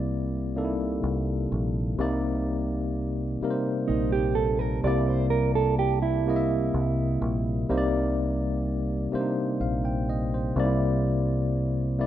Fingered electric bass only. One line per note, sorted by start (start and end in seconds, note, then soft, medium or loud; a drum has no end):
0.00 0.99 C2 loud
1.03 1.46 C2 medium
1.52 1.94 A#1 loud
1.98 3.37 C2 loud
3.41 muted fingered electric bass stroke soft
3.89 4.80 A#1 loud
4.84 6.70 C2 loud
6.74 7.17 C2 medium
7.22 7.65 A#1 loud
7.70 9.08 C2 loud
9.13 muted fingered electric bass stroke medium
9.61 10.51 A#1 medium
10.56 12.07 C2 loud